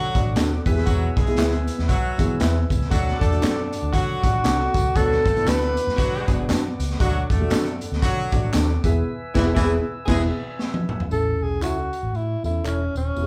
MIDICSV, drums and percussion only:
0, 0, Header, 1, 2, 480
1, 0, Start_track
1, 0, Key_signature, 3, "major"
1, 0, Tempo, 511945
1, 820, Time_signature, 4, 2, 24, 8
1, 12439, End_track
2, 0, Start_track
2, 0, Title_t, "Drums"
2, 141, Note_on_c, 9, 36, 95
2, 142, Note_on_c, 9, 42, 78
2, 144, Note_on_c, 9, 54, 50
2, 235, Note_off_c, 9, 36, 0
2, 236, Note_off_c, 9, 42, 0
2, 238, Note_off_c, 9, 54, 0
2, 336, Note_on_c, 9, 42, 95
2, 344, Note_on_c, 9, 38, 102
2, 348, Note_on_c, 9, 39, 87
2, 348, Note_on_c, 9, 54, 88
2, 430, Note_off_c, 9, 42, 0
2, 438, Note_off_c, 9, 38, 0
2, 442, Note_off_c, 9, 39, 0
2, 442, Note_off_c, 9, 54, 0
2, 615, Note_on_c, 9, 46, 54
2, 619, Note_on_c, 9, 36, 89
2, 626, Note_on_c, 9, 54, 62
2, 708, Note_off_c, 9, 46, 0
2, 712, Note_off_c, 9, 36, 0
2, 714, Note_on_c, 9, 38, 34
2, 719, Note_off_c, 9, 54, 0
2, 808, Note_off_c, 9, 38, 0
2, 810, Note_on_c, 9, 42, 91
2, 815, Note_on_c, 9, 36, 99
2, 816, Note_on_c, 9, 54, 54
2, 904, Note_off_c, 9, 42, 0
2, 909, Note_off_c, 9, 36, 0
2, 909, Note_off_c, 9, 54, 0
2, 1095, Note_on_c, 9, 36, 98
2, 1102, Note_on_c, 9, 42, 68
2, 1189, Note_off_c, 9, 36, 0
2, 1191, Note_off_c, 9, 42, 0
2, 1191, Note_on_c, 9, 42, 46
2, 1280, Note_off_c, 9, 42, 0
2, 1280, Note_on_c, 9, 42, 79
2, 1296, Note_on_c, 9, 38, 98
2, 1304, Note_on_c, 9, 39, 97
2, 1304, Note_on_c, 9, 54, 86
2, 1373, Note_off_c, 9, 42, 0
2, 1389, Note_off_c, 9, 38, 0
2, 1398, Note_off_c, 9, 39, 0
2, 1398, Note_off_c, 9, 54, 0
2, 1427, Note_on_c, 9, 42, 48
2, 1521, Note_off_c, 9, 42, 0
2, 1570, Note_on_c, 9, 42, 64
2, 1576, Note_on_c, 9, 54, 54
2, 1664, Note_off_c, 9, 42, 0
2, 1670, Note_off_c, 9, 54, 0
2, 1670, Note_on_c, 9, 38, 34
2, 1764, Note_off_c, 9, 38, 0
2, 1771, Note_on_c, 9, 42, 90
2, 1773, Note_on_c, 9, 36, 92
2, 1789, Note_on_c, 9, 54, 28
2, 1865, Note_off_c, 9, 42, 0
2, 1867, Note_off_c, 9, 36, 0
2, 1883, Note_off_c, 9, 54, 0
2, 2053, Note_on_c, 9, 42, 80
2, 2054, Note_on_c, 9, 36, 94
2, 2062, Note_on_c, 9, 54, 51
2, 2147, Note_off_c, 9, 42, 0
2, 2148, Note_off_c, 9, 36, 0
2, 2156, Note_off_c, 9, 54, 0
2, 2249, Note_on_c, 9, 42, 92
2, 2257, Note_on_c, 9, 38, 100
2, 2270, Note_on_c, 9, 39, 84
2, 2270, Note_on_c, 9, 54, 86
2, 2343, Note_off_c, 9, 42, 0
2, 2351, Note_off_c, 9, 38, 0
2, 2364, Note_off_c, 9, 39, 0
2, 2364, Note_off_c, 9, 54, 0
2, 2535, Note_on_c, 9, 36, 88
2, 2535, Note_on_c, 9, 42, 73
2, 2551, Note_on_c, 9, 54, 64
2, 2628, Note_off_c, 9, 36, 0
2, 2628, Note_off_c, 9, 42, 0
2, 2632, Note_on_c, 9, 38, 35
2, 2645, Note_off_c, 9, 54, 0
2, 2726, Note_off_c, 9, 38, 0
2, 2732, Note_on_c, 9, 54, 57
2, 2733, Note_on_c, 9, 36, 104
2, 2733, Note_on_c, 9, 42, 88
2, 2826, Note_off_c, 9, 36, 0
2, 2826, Note_off_c, 9, 54, 0
2, 2827, Note_off_c, 9, 42, 0
2, 2884, Note_on_c, 9, 38, 31
2, 2978, Note_off_c, 9, 38, 0
2, 3013, Note_on_c, 9, 36, 92
2, 3021, Note_on_c, 9, 42, 66
2, 3027, Note_on_c, 9, 54, 37
2, 3106, Note_off_c, 9, 36, 0
2, 3114, Note_off_c, 9, 42, 0
2, 3114, Note_on_c, 9, 42, 43
2, 3121, Note_off_c, 9, 54, 0
2, 3206, Note_off_c, 9, 42, 0
2, 3206, Note_on_c, 9, 42, 78
2, 3219, Note_on_c, 9, 39, 93
2, 3219, Note_on_c, 9, 54, 99
2, 3222, Note_on_c, 9, 38, 103
2, 3300, Note_off_c, 9, 42, 0
2, 3313, Note_off_c, 9, 39, 0
2, 3313, Note_off_c, 9, 54, 0
2, 3316, Note_off_c, 9, 38, 0
2, 3493, Note_on_c, 9, 42, 59
2, 3499, Note_on_c, 9, 54, 57
2, 3587, Note_off_c, 9, 42, 0
2, 3593, Note_off_c, 9, 54, 0
2, 3690, Note_on_c, 9, 36, 95
2, 3691, Note_on_c, 9, 42, 90
2, 3702, Note_on_c, 9, 54, 29
2, 3784, Note_off_c, 9, 36, 0
2, 3785, Note_off_c, 9, 42, 0
2, 3795, Note_off_c, 9, 54, 0
2, 3971, Note_on_c, 9, 36, 95
2, 3972, Note_on_c, 9, 42, 80
2, 3975, Note_on_c, 9, 54, 53
2, 4065, Note_off_c, 9, 36, 0
2, 4066, Note_off_c, 9, 42, 0
2, 4068, Note_off_c, 9, 54, 0
2, 4165, Note_on_c, 9, 42, 94
2, 4173, Note_on_c, 9, 38, 103
2, 4179, Note_on_c, 9, 39, 88
2, 4179, Note_on_c, 9, 54, 89
2, 4259, Note_off_c, 9, 42, 0
2, 4267, Note_off_c, 9, 38, 0
2, 4273, Note_off_c, 9, 39, 0
2, 4273, Note_off_c, 9, 54, 0
2, 4446, Note_on_c, 9, 42, 73
2, 4449, Note_on_c, 9, 36, 90
2, 4469, Note_on_c, 9, 54, 67
2, 4539, Note_off_c, 9, 42, 0
2, 4543, Note_off_c, 9, 36, 0
2, 4562, Note_off_c, 9, 54, 0
2, 4647, Note_on_c, 9, 36, 110
2, 4648, Note_on_c, 9, 42, 91
2, 4656, Note_on_c, 9, 54, 56
2, 4741, Note_off_c, 9, 36, 0
2, 4742, Note_off_c, 9, 42, 0
2, 4750, Note_off_c, 9, 54, 0
2, 4795, Note_on_c, 9, 38, 32
2, 4888, Note_off_c, 9, 38, 0
2, 4928, Note_on_c, 9, 36, 92
2, 4939, Note_on_c, 9, 42, 67
2, 4945, Note_on_c, 9, 54, 35
2, 5022, Note_off_c, 9, 36, 0
2, 5029, Note_off_c, 9, 42, 0
2, 5029, Note_on_c, 9, 42, 44
2, 5039, Note_off_c, 9, 54, 0
2, 5123, Note_off_c, 9, 42, 0
2, 5123, Note_on_c, 9, 42, 75
2, 5135, Note_on_c, 9, 39, 90
2, 5135, Note_on_c, 9, 54, 91
2, 5139, Note_on_c, 9, 38, 102
2, 5217, Note_off_c, 9, 42, 0
2, 5229, Note_off_c, 9, 39, 0
2, 5229, Note_off_c, 9, 54, 0
2, 5233, Note_off_c, 9, 38, 0
2, 5265, Note_on_c, 9, 42, 45
2, 5359, Note_off_c, 9, 42, 0
2, 5408, Note_on_c, 9, 42, 64
2, 5413, Note_on_c, 9, 54, 61
2, 5502, Note_off_c, 9, 42, 0
2, 5507, Note_off_c, 9, 54, 0
2, 5513, Note_on_c, 9, 38, 35
2, 5606, Note_off_c, 9, 38, 0
2, 5609, Note_on_c, 9, 36, 98
2, 5616, Note_on_c, 9, 42, 90
2, 5616, Note_on_c, 9, 54, 28
2, 5703, Note_off_c, 9, 36, 0
2, 5710, Note_off_c, 9, 42, 0
2, 5710, Note_off_c, 9, 54, 0
2, 5886, Note_on_c, 9, 54, 51
2, 5889, Note_on_c, 9, 36, 94
2, 5896, Note_on_c, 9, 42, 73
2, 5980, Note_off_c, 9, 54, 0
2, 5983, Note_off_c, 9, 36, 0
2, 5989, Note_off_c, 9, 42, 0
2, 6085, Note_on_c, 9, 42, 89
2, 6093, Note_on_c, 9, 38, 102
2, 6094, Note_on_c, 9, 39, 89
2, 6094, Note_on_c, 9, 54, 86
2, 6179, Note_off_c, 9, 42, 0
2, 6187, Note_off_c, 9, 38, 0
2, 6187, Note_off_c, 9, 39, 0
2, 6187, Note_off_c, 9, 54, 0
2, 6374, Note_on_c, 9, 42, 79
2, 6378, Note_on_c, 9, 54, 62
2, 6467, Note_off_c, 9, 42, 0
2, 6470, Note_on_c, 9, 38, 35
2, 6471, Note_off_c, 9, 54, 0
2, 6564, Note_off_c, 9, 38, 0
2, 6565, Note_on_c, 9, 36, 109
2, 6565, Note_on_c, 9, 42, 86
2, 6565, Note_on_c, 9, 54, 56
2, 6658, Note_off_c, 9, 42, 0
2, 6659, Note_off_c, 9, 36, 0
2, 6659, Note_off_c, 9, 54, 0
2, 6845, Note_on_c, 9, 36, 98
2, 6853, Note_on_c, 9, 54, 36
2, 6854, Note_on_c, 9, 42, 69
2, 6939, Note_off_c, 9, 36, 0
2, 6947, Note_off_c, 9, 54, 0
2, 6948, Note_off_c, 9, 42, 0
2, 7034, Note_on_c, 9, 42, 76
2, 7050, Note_on_c, 9, 38, 109
2, 7050, Note_on_c, 9, 39, 94
2, 7050, Note_on_c, 9, 54, 93
2, 7128, Note_off_c, 9, 42, 0
2, 7143, Note_off_c, 9, 38, 0
2, 7144, Note_off_c, 9, 39, 0
2, 7144, Note_off_c, 9, 54, 0
2, 7178, Note_on_c, 9, 42, 48
2, 7272, Note_off_c, 9, 42, 0
2, 7323, Note_on_c, 9, 42, 60
2, 7329, Note_on_c, 9, 54, 58
2, 7417, Note_off_c, 9, 42, 0
2, 7423, Note_off_c, 9, 54, 0
2, 7428, Note_on_c, 9, 38, 35
2, 7521, Note_off_c, 9, 38, 0
2, 7524, Note_on_c, 9, 36, 101
2, 7527, Note_on_c, 9, 42, 89
2, 7529, Note_on_c, 9, 54, 31
2, 7618, Note_off_c, 9, 36, 0
2, 7621, Note_off_c, 9, 42, 0
2, 7622, Note_off_c, 9, 54, 0
2, 7801, Note_on_c, 9, 54, 55
2, 7804, Note_on_c, 9, 42, 83
2, 7806, Note_on_c, 9, 36, 99
2, 7895, Note_off_c, 9, 54, 0
2, 7898, Note_off_c, 9, 42, 0
2, 7899, Note_off_c, 9, 36, 0
2, 8001, Note_on_c, 9, 42, 87
2, 8004, Note_on_c, 9, 39, 92
2, 8004, Note_on_c, 9, 54, 89
2, 8008, Note_on_c, 9, 38, 105
2, 8094, Note_off_c, 9, 42, 0
2, 8098, Note_off_c, 9, 39, 0
2, 8098, Note_off_c, 9, 54, 0
2, 8102, Note_off_c, 9, 38, 0
2, 8287, Note_on_c, 9, 42, 78
2, 8288, Note_on_c, 9, 36, 95
2, 8291, Note_on_c, 9, 54, 64
2, 8381, Note_off_c, 9, 36, 0
2, 8381, Note_off_c, 9, 42, 0
2, 8385, Note_off_c, 9, 54, 0
2, 8769, Note_on_c, 9, 36, 101
2, 8769, Note_on_c, 9, 49, 78
2, 8771, Note_on_c, 9, 38, 97
2, 8862, Note_off_c, 9, 49, 0
2, 8863, Note_off_c, 9, 36, 0
2, 8865, Note_off_c, 9, 38, 0
2, 8968, Note_on_c, 9, 36, 103
2, 8968, Note_on_c, 9, 38, 94
2, 9062, Note_off_c, 9, 36, 0
2, 9062, Note_off_c, 9, 38, 0
2, 9448, Note_on_c, 9, 49, 85
2, 9450, Note_on_c, 9, 36, 116
2, 9451, Note_on_c, 9, 38, 110
2, 9542, Note_off_c, 9, 49, 0
2, 9544, Note_off_c, 9, 36, 0
2, 9545, Note_off_c, 9, 38, 0
2, 9932, Note_on_c, 9, 38, 54
2, 10026, Note_off_c, 9, 38, 0
2, 10069, Note_on_c, 9, 48, 64
2, 10163, Note_off_c, 9, 48, 0
2, 10210, Note_on_c, 9, 45, 83
2, 10303, Note_off_c, 9, 45, 0
2, 10315, Note_on_c, 9, 43, 95
2, 10409, Note_off_c, 9, 43, 0
2, 10419, Note_on_c, 9, 54, 50
2, 10512, Note_off_c, 9, 54, 0
2, 10899, Note_on_c, 9, 39, 80
2, 10899, Note_on_c, 9, 54, 84
2, 10993, Note_off_c, 9, 39, 0
2, 10993, Note_off_c, 9, 54, 0
2, 11185, Note_on_c, 9, 54, 50
2, 11279, Note_off_c, 9, 54, 0
2, 11388, Note_on_c, 9, 54, 26
2, 11482, Note_off_c, 9, 54, 0
2, 11666, Note_on_c, 9, 54, 46
2, 11760, Note_off_c, 9, 54, 0
2, 11866, Note_on_c, 9, 39, 77
2, 11866, Note_on_c, 9, 54, 76
2, 11959, Note_off_c, 9, 39, 0
2, 11959, Note_off_c, 9, 54, 0
2, 12149, Note_on_c, 9, 54, 59
2, 12242, Note_off_c, 9, 54, 0
2, 12343, Note_on_c, 9, 54, 47
2, 12437, Note_off_c, 9, 54, 0
2, 12439, End_track
0, 0, End_of_file